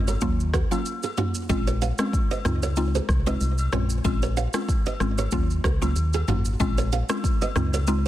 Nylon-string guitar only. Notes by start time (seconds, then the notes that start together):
0.08 A#4 C#5
0.54 F#4 A#4
1.03 F4 G#4
1.18 D#4 F#4
1.67 A#4 C#5
1.82 C#5 F5
2.31 C5 D#5
2.63 A#4 C#5
2.95 G#4 C5
3.27 C5 D#5
3.73 A#4 C#5
4.23 A#4 C#5
4.37 C#5 F5
4.87 C5 D#5
5.18 A#4 C#5
5.65 F#4 A#4
6.14 F4 G#4
6.29 D#4 F#4
6.78 A#4 C#5
6.93 C#5 F5
7.42 C5 D#5
7.74 A#4 C#5